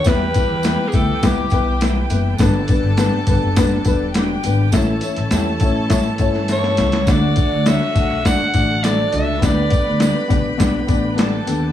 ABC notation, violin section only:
X:1
M:4/4
L:1/8
Q:1/4=102
K:Glyd
V:1 name="Violin section"
[Gg]8 | [Aa]6 [Gg]2 | [Aa]8 | [Ff]6 [Aa]2 |
[Bb]6 [Aa]2 |]